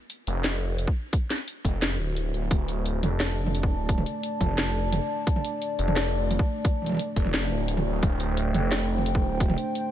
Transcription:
0.10 closed hi-hat medium
0.27 0.87 F1 medium
0.27 closed hi-hat medium
0.44 snare loud
0.44 closed hi-hat medium
0.78 closed hi-hat medium
0.87 kick medium
1.13 kick loud
1.13 closed hi-hat medium
1.30 snare medium
1.30 closed hi-hat medium
1.48 closed hi-hat medium
1.65 1.98 F1 medium
1.65 kick medium
1.65 closed hi-hat medium
1.82 snare loud
1.82 closed hi-hat medium
1.99 2.33 D1 loud
2.17 closed hi-hat medium
2.34 2.50 D1 medium
2.34 closed hi-hat soft
2.51 3.02 D1 loud
2.51 9.91 A3 medium
2.51 kick loud
2.51 closed hi-hat medium
2.51 mid tom soft
2.61 9.91 D4 medium
2.61 7.84 A5 medium
2.68 closed hi-hat medium
2.86 7.77 D5 medium
2.86 closed hi-hat medium
3.03 3.73 F1 medium
3.03 closed hi-hat medium
3.03 mid tom medium
3.20 snare loud
3.20 closed hi-hat medium
3.46 mid tom medium
3.55 closed hi-hat medium
3.63 kick loud
3.72 4.05 D1 medium
3.89 kick loud
3.89 closed hi-hat medium
3.98 mid tom medium
4.06 closed hi-hat medium
4.23 closed hi-hat medium
4.41 5.00 F1 medium
4.41 kick medium
4.41 closed hi-hat medium
4.41 mid tom soft
4.44 mid tom soft
4.47 mid tom soft
4.50 mid tom soft
4.52 mid tom soft
4.55 snare loud
4.55 closed hi-hat medium
4.55 mid tom soft
4.92 closed hi-hat medium
4.92 mid tom medium
5.27 kick loud
5.27 closed hi-hat medium
5.36 mid tom medium
5.44 closed hi-hat medium
5.62 closed hi-hat medium
5.79 6.38 F1 medium
5.79 closed hi-hat medium
5.88 mid tom medium
5.96 snare loud
5.96 closed hi-hat medium
6.31 closed hi-hat medium
6.31 mid tom soft
6.39 kick loud
6.65 kick loud
6.65 closed hi-hat medium
6.82 mid tom soft
6.84 closed hi-hat medium
6.84 mid tom soft
6.87 mid tom soft
6.89 mid tom soft
6.92 mid tom medium
6.94 mid tom medium
6.97 closed hi-hat medium
6.97 mid tom medium
7.16 7.50 F1 medium
7.16 kick medium
7.16 closed hi-hat medium
7.26 mid tom soft
7.34 snare loud
7.34 closed hi-hat medium
7.52 7.85 D1 medium
7.68 9.91 C5 medium
7.68 closed hi-hat medium
7.74 9.91 G5 medium
7.74 mid tom medium
7.86 8.02 D1 medium
8.03 8.53 D1 loud
8.03 kick loud
8.03 closed hi-hat medium
8.03 mid tom soft
8.20 closed hi-hat medium
8.37 closed hi-hat medium
8.54 9.25 F1 medium
8.54 closed hi-hat medium
8.54 mid tom medium
8.72 snare loud
8.72 closed hi-hat medium
8.98 mid tom soft
9.06 closed hi-hat medium
9.15 kick loud
9.24 9.57 D1 medium
9.40 kick loud
9.40 closed hi-hat medium
9.50 mid tom medium
9.58 closed hi-hat medium
9.75 closed hi-hat medium

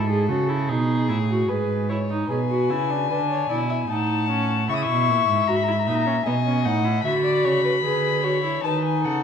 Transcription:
0.00 0.30 G#2 medium
0.00 0.70 A4 medium
0.09 0.28 G#4 medium
0.29 0.70 C#3 medium
0.29 0.50 F#4 medium
0.49 0.70 E4 medium
0.68 1.10 B2 medium
0.68 1.08 D#4 medium
0.68 1.50 G#4 medium
1.09 1.48 A2 medium
1.09 1.17 E4 medium
1.29 1.51 F#4 medium
1.48 2.28 G#2 medium
1.48 1.89 G#4 medium
1.48 1.90 B4 medium
1.89 1.98 E4 medium
1.89 2.29 C#5 medium
2.10 2.29 D#4 medium
2.29 2.71 B2 medium
2.29 2.38 G#4 medium
2.29 3.05 B4 medium
2.29 3.91 G#5 medium
2.50 2.71 F#4 medium
2.69 3.11 C#3 medium
2.69 2.92 E4 medium
2.90 3.10 D4 medium
3.09 3.49 D3 medium
3.09 3.49 D4 medium
3.09 3.18 B4 medium
3.29 3.49 C#5 medium
3.50 3.89 B2 medium
3.50 3.89 E4 medium
3.50 3.58 D5 medium
3.69 3.77 E5 medium
3.89 4.70 A2 medium
3.89 4.28 D#4 medium
3.89 4.71 F#5 medium
3.89 4.68 A5 medium
4.29 4.68 C#4 medium
4.68 4.88 C#3 medium
4.68 5.46 E4 medium
4.68 6.27 E5 medium
4.68 4.77 C#6 medium
4.76 4.84 D#6 medium
4.82 5.49 C#6 medium
4.88 5.09 B2 medium
5.08 5.27 A#2 medium
5.28 5.47 G#2 medium
5.47 5.88 G#2 medium
5.47 5.56 F#4 medium
5.47 5.57 A#5 medium
5.56 5.65 B5 medium
5.63 5.73 A#5 medium
5.68 5.76 E4 medium
5.68 5.81 B5 medium
5.79 5.88 A#5 medium
5.87 6.25 A#2 medium
5.87 6.06 D#4 medium
5.87 5.97 B5 medium
5.95 6.25 A#5 medium
6.07 6.14 C#4 medium
6.26 6.67 B2 medium
6.26 6.34 B3 medium
6.26 7.04 D#5 medium
6.26 6.66 G#5 medium
6.46 6.65 C#4 medium
6.65 7.04 A2 medium
6.65 6.86 D#4 medium
6.65 7.04 F#5 medium
6.85 7.04 E4 medium
7.04 7.45 D3 medium
7.04 7.82 F#4 medium
7.04 7.12 E5 medium
7.04 8.60 B5 medium
7.24 7.45 D5 medium
7.44 7.83 C#3 medium
7.44 7.63 C#5 medium
7.64 7.72 B4 medium
7.84 8.62 D3 medium
7.84 8.25 G#4 medium
7.84 8.23 B4 medium
8.24 8.43 F#4 medium
8.24 8.65 C#5 medium
8.44 8.63 E4 medium
8.63 9.06 D#3 medium
8.63 9.23 D#4 medium
8.63 9.03 B4 medium
8.63 8.83 A5 medium
8.84 9.06 G#5 medium
9.03 9.23 C#3 medium
9.03 9.23 A4 medium
9.03 9.23 F#5 medium

